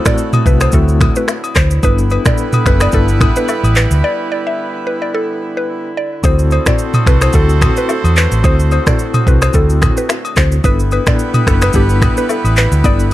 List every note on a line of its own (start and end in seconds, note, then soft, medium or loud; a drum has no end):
0.00 10.60 D3 medium
0.00 1.79 F#3 medium
0.00 1.52 A3 medium
0.00 1.79 A3 medium
0.00 1.79 C4 medium
0.00 1.52 E4 medium
0.00 8.40 E4 medium
0.00 1.52 F#4 medium
0.00 1.52 A4 loud
0.05 0.43 A3 medium
0.05 0.43 C4 medium
0.05 0.43 E4 medium
0.05 0.43 F#4 medium
0.05 0.17 D5 medium
0.05 finger snap medium
0.05 kick medium
0.05 cross-stick loud
0.05 mid tom medium
0.05 shaker loud
0.18 shaker medium
0.33 mid tom loud
0.33 high agogo medium
0.33 shaker medium
0.45 0.67 C2 medium
0.45 0.71 A3 medium
0.45 0.71 C4 medium
0.45 0.71 E4 medium
0.45 0.71 F#4 medium
0.45 0.59 B4 medium
0.45 kick loud
0.45 shaker medium
0.60 0.72 C5 medium
0.60 finger snap medium
0.60 cross-stick medium
0.60 high agogo medium
0.60 shaker medium
0.72 1.07 D2 loud
0.72 1.12 A3 loud
0.72 1.12 C4 medium
0.72 1.12 E4 medium
0.72 1.12 F#4 loud
0.72 0.87 A4 medium
0.72 kick medium
0.72 shaker medium
0.88 shaker medium
1.00 finger snap medium
1.00 kick medium
1.00 cross-stick medium
1.00 mid tom medium
1.00 high agogo medium
1.00 shaker medium
1.16 1.32 A3 medium
1.16 1.32 C4 medium
1.16 1.32 E4 medium
1.16 1.32 F#4 medium
1.16 1.27 B4 medium
1.16 shaker medium
1.28 finger snap medium
1.28 cross-stick loud
1.28 low woodblock medium
1.28 shaker medium
1.44 high agogo medium
1.44 shaker medium
1.55 1.77 D2 medium
1.55 1.69 C5 medium
1.55 finger snap medium
1.55 kick loud
1.55 cross-stick loud
1.55 clap loud
1.55 shaker medium
1.71 shaker medium
1.83 2.17 G1 loud
1.83 6.07 E3 medium
1.83 6.07 G3 medium
1.83 2.22 B3 medium
1.83 6.07 B3 medium
1.83 5.92 B3 medium
1.83 2.22 D4 medium
1.83 2.22 E4 medium
1.83 5.92 E4 medium
1.83 5.92 G4 medium
1.83 2.22 A4 loud
1.83 5.92 B4 loud
1.83 1.97 B4 loud
1.83 kick loud
1.83 high agogo medium
1.83 shaker medium
1.98 shaker medium
2.10 2.24 B4 medium
2.10 high agogo medium
2.10 shaker soft
2.25 2.63 B3 medium
2.25 2.63 D4 medium
2.25 2.63 E4 medium
2.25 2.63 A4 medium
2.25 2.37 D5 medium
2.25 finger snap medium
2.25 kick medium
2.25 cross-stick loud
2.25 mid tom medium
2.25 shaker loud
2.38 shaker medium
2.53 mid tom loud
2.53 high agogo medium
2.53 shaker medium
2.65 2.87 F#1 loud
2.65 2.91 B3 medium
2.65 2.91 D4 medium
2.65 2.91 E4 medium
2.65 2.91 A4 medium
2.65 2.79 B4 medium
2.65 finger snap medium
2.65 kick loud
2.65 cross-stick medium
2.65 shaker medium
2.80 2.92 D5 medium
2.80 finger snap medium
2.80 cross-stick medium
2.80 high agogo medium
2.80 shaker medium
2.92 3.27 G1 loud
2.92 3.32 B3 loud
2.92 3.32 D4 medium
2.92 3.32 E4 medium
2.92 3.32 A4 loud
2.92 3.07 A4 medium
2.92 kick medium
2.92 shaker medium
3.08 shaker soft
3.20 finger snap medium
3.20 kick medium
3.20 cross-stick medium
3.20 mid tom medium
3.20 high agogo medium
3.20 shaker medium
3.36 3.52 B3 medium
3.36 3.52 D4 medium
3.36 3.52 E4 medium
3.36 3.53 A4 medium
3.36 3.47 B4 medium
3.36 shaker medium
3.48 3.62 A4 medium
3.48 low woodblock medium
3.48 shaker medium
3.63 3.85 A1 medium
3.63 high agogo medium
3.63 shaker soft
3.75 3.89 B4 medium
3.75 clap loud
3.75 shaker medium
3.91 4.01 D2 medium
3.91 shaker medium
4.04 4.17 D5 loud
4.32 4.44 D5 medium
4.47 4.57 E5 medium
4.87 4.99 B4 medium
5.02 5.12 D5 medium
5.14 5.27 A4 medium
5.57 5.67 B4 medium
5.97 6.10 D5 medium
6.23 6.57 D2 loud
6.23 10.60 F#3 medium
6.23 10.60 A3 medium
6.23 6.63 C4 medium
6.23 10.32 C4 medium
6.23 10.60 C4 medium
6.23 6.63 E4 medium
6.23 10.33 F#4 medium
6.23 6.63 F#4 medium
6.23 10.33 A4 medium
6.23 6.63 A4 loud
6.23 10.32 C5 loud
6.23 6.37 C5 loud
6.23 kick loud
6.23 high agogo medium
6.23 shaker medium
6.39 shaker medium
6.51 6.65 C5 medium
6.51 high agogo medium
6.51 shaker soft
6.66 7.03 C4 medium
6.66 7.03 E4 medium
6.66 7.03 F#4 medium
6.66 7.03 A4 medium
6.66 6.78 D5 medium
6.66 finger snap medium
6.66 kick medium
6.66 cross-stick loud
6.66 mid tom medium
6.66 shaker medium
6.78 shaker medium
6.94 mid tom loud
6.94 high agogo medium
6.94 shaker medium
7.06 7.28 C2 loud
7.06 7.32 C4 medium
7.06 7.32 E4 medium
7.06 7.32 F#4 medium
7.06 7.32 A4 medium
7.06 7.20 B4 medium
7.06 finger snap medium
7.06 kick loud
7.06 cross-stick medium
7.06 shaker medium
7.21 7.33 C5 medium
7.21 finger snap medium
7.21 cross-stick medium
7.21 high agogo medium
7.21 shaker medium
7.33 7.67 D2 loud
7.33 7.73 C4 loud
7.33 7.73 E4 medium
7.33 7.73 F#4 medium
7.33 7.73 A4 loud
7.33 7.47 A4 medium
7.33 kick medium
7.33 shaker medium
7.49 shaker medium
7.61 finger snap medium
7.61 kick medium
7.61 cross-stick medium
7.61 mid tom medium
7.61 high agogo medium
7.61 shaker medium
7.76 7.93 C4 medium
7.76 7.93 E4 medium
7.76 7.93 F#4 medium
7.76 7.93 A4 medium
7.76 7.88 B4 medium
7.76 shaker medium
7.89 8.02 A4 medium
7.89 low woodblock medium
7.89 shaker medium
8.04 8.26 E2 medium
8.04 high agogo medium
8.04 shaker medium
8.16 8.30 B4 medium
8.16 clap loud
8.16 shaker medium
8.32 8.41 A1 medium
8.32 shaker medium
8.43 8.77 D2 loud
8.43 8.83 C4 loud
8.43 8.83 E4 medium
8.43 8.83 F#4 medium
8.43 10.62 F#4 medium
8.43 8.83 A4 loud
8.43 8.57 C5 loud
8.43 kick loud
8.43 high agogo medium
8.43 shaker medium
8.60 shaker medium
8.71 8.85 C5 medium
8.71 high agogo medium
8.71 shaker soft
8.86 9.23 C4 medium
8.86 9.23 E4 medium
8.86 9.23 F#4 medium
8.86 9.24 A4 medium
8.86 8.98 D5 medium
8.86 finger snap medium
8.86 kick medium
8.86 cross-stick loud
8.86 mid tom medium
8.86 shaker medium
8.99 shaker medium
9.14 mid tom medium
9.14 high agogo medium
9.14 shaker medium
9.26 9.48 C2 medium
9.26 9.52 C4 medium
9.26 9.52 E4 medium
9.26 9.52 F#4 medium
9.26 9.52 A4 medium
9.26 9.40 B4 medium
9.26 kick loud
9.26 shaker medium
9.42 9.53 C5 medium
9.42 finger snap medium
9.42 cross-stick medium
9.42 high agogo medium
9.42 shaker medium
9.53 9.87 D2 loud
9.53 9.93 C4 medium
9.53 9.93 E4 medium
9.53 9.93 F#4 medium
9.53 9.93 A4 loud
9.53 9.67 A4 medium
9.53 kick medium
9.53 shaker medium
9.70 shaker medium
9.82 finger snap medium
9.82 kick medium
9.82 cross-stick medium
9.82 mid tom medium
9.82 high agogo medium
9.82 shaker medium
9.96 10.13 C4 medium
9.96 10.13 E4 medium
9.96 10.13 F#4 medium
9.96 10.13 A4 medium
9.96 10.08 B4 medium
9.96 shaker medium
10.09 finger snap medium
10.09 cross-stick loud
10.09 low woodblock medium
10.09 shaker medium
10.25 high agogo medium
10.25 shaker medium
10.36 10.58 D2 medium
10.36 10.55 C4 medium
10.36 10.55 E4 medium
10.36 10.55 F#4 medium
10.36 10.55 A4 medium
10.36 10.50 C5 medium
10.36 finger snap medium
10.36 kick medium
10.36 cross-stick loud
10.36 clap loud
10.36 shaker medium
10.52 shaker medium
10.64 10.98 G1 loud
10.64 13.14 D3 medium
10.64 13.14 E3 medium
10.64 13.14 G3 medium
10.64 11.03 B3 medium
10.64 13.14 B3 medium
10.64 11.03 D4 medium
10.64 13.14 E4 medium
10.64 11.03 E4 medium
10.64 13.14 E4 medium
10.64 13.14 G4 medium
10.64 11.03 A4 loud
10.64 13.14 B4 loud
10.64 10.77 B4 loud
10.64 kick loud
10.64 high agogo medium
10.64 shaker medium
10.79 shaker medium
10.91 11.05 B4 medium
10.91 high agogo medium
10.91 shaker soft
11.06 11.44 B3 medium
11.06 11.44 D4 medium
11.06 11.44 E4 medium
11.06 11.44 A4 medium
11.06 11.18 D5 medium
11.06 finger snap medium
11.06 kick medium
11.06 cross-stick loud
11.06 mid tom medium
11.06 shaker medium
11.19 shaker medium
11.34 mid tom loud
11.34 high agogo medium
11.34 shaker medium
11.46 11.68 F#1 loud
11.46 11.72 B3 medium
11.46 11.72 D4 medium
11.46 11.72 E4 medium
11.46 11.60 A4 medium
11.46 finger snap medium
11.46 kick loud
11.46 cross-stick medium
11.46 shaker medium
11.62 11.73 B4 medium
11.62 finger snap medium
11.62 cross-stick medium
11.62 high agogo medium
11.62 shaker medium
11.73 12.08 G1 loud
11.73 12.13 B3 medium
11.73 12.13 D4 medium
11.73 12.13 E4 medium
11.73 11.88 G4 medium
11.73 12.13 A4 loud
11.73 kick medium
11.73 shaker medium
11.89 shaker medium
12.02 finger snap medium
12.02 kick medium
12.02 cross-stick medium
12.02 mid tom medium
12.02 high agogo medium
12.02 shaker medium
12.16 12.33 B3 medium
12.16 12.33 D4 medium
12.16 12.33 E4 medium
12.16 12.33 A4 medium
12.16 12.28 B4 medium
12.16 shaker medium
12.29 12.43 A4 medium
12.29 low woodblock medium
12.29 shaker medium
12.44 12.66 A1 medium
12.44 high agogo medium
12.44 shaker medium
12.56 12.70 B4 medium
12.56 clap loud
12.56 shaker medium
12.72 12.81 D2 medium
12.72 shaker medium
12.84 13.14 G1 loud
12.84 13.14 B3 loud
12.84 13.14 D4 medium
12.84 13.14 E4 medium
12.84 13.14 A4 loud
12.84 12.98 D5 loud
12.84 kick loud
12.84 high agogo medium
12.84 shaker medium
12.99 shaker medium